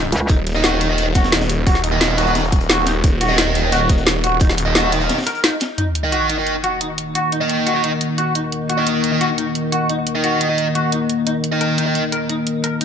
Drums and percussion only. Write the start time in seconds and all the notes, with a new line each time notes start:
0.04 snare
0.12 closed hi-hat
0.28 kick, closed hi-hat
0.46 closed hi-hat, open hi-hat
0.56 snare
0.64 snare, closed hi-hat
0.72 snare
0.81 closed hi-hat
0.98 closed hi-hat
1.14 kick, snare, closed hi-hat
1.24 snare, closed hi-hat
1.32 snare, closed hi-hat
1.41 snare, closed hi-hat
1.49 closed hi-hat
1.67 kick, closed hi-hat
1.75 snare
1.84 closed hi-hat
2.01 snare, closed hi-hat
2.10 snare
2.18 closed hi-hat
2.27 closed hi-hat
2.35 snare, closed hi-hat
2.44 closed hi-hat
2.52 kick, closed hi-hat
2.61 closed hi-hat
2.69 snare, closed hi-hat
2.78 snare
2.86 snare, closed hi-hat
3.04 kick, closed hi-hat
3.21 closed hi-hat, open hi-hat
3.30 snare
3.38 snare, closed hi-hat
3.47 snare
3.55 closed hi-hat
3.72 closed hi-hat
3.89 kick, closed hi-hat
3.98 closed hi-hat
4.06 snare, closed hi-hat
4.24 closed hi-hat
4.40 kick, closed hi-hat
4.49 snare
4.57 closed hi-hat
4.75 snare, closed hi-hat
4.84 snare
4.92 closed hi-hat
5.01 closed hi-hat
5.09 snare, closed hi-hat
5.18 snare, closed hi-hat
5.22 snare, closed hi-hat
5.26 closed hi-hat
5.35 closed hi-hat
5.44 snare, closed hi-hat
5.60 snare, closed hi-hat
5.78 closed hi-hat
5.95 closed hi-hat
6.12 closed hi-hat
6.29 closed hi-hat
6.47 closed hi-hat
6.64 closed hi-hat
6.81 closed hi-hat
6.98 closed hi-hat
7.15 closed hi-hat
7.32 closed hi-hat
7.49 closed hi-hat
7.67 closed hi-hat
7.84 closed hi-hat
8.01 closed hi-hat
8.18 closed hi-hat
8.35 closed hi-hat
8.52 closed hi-hat
8.70 closed hi-hat
8.87 closed hi-hat
9.04 closed hi-hat
9.21 closed hi-hat
9.38 closed hi-hat
9.55 closed hi-hat
9.72 closed hi-hat
9.89 closed hi-hat
10.07 closed hi-hat
10.24 closed hi-hat
10.41 closed hi-hat
10.58 closed hi-hat
10.75 closed hi-hat
10.92 closed hi-hat
11.09 closed hi-hat
11.27 closed hi-hat
11.44 closed hi-hat
11.61 closed hi-hat
11.78 closed hi-hat
11.95 closed hi-hat
12.12 closed hi-hat
12.29 closed hi-hat
12.47 closed hi-hat
12.64 closed hi-hat
12.81 closed hi-hat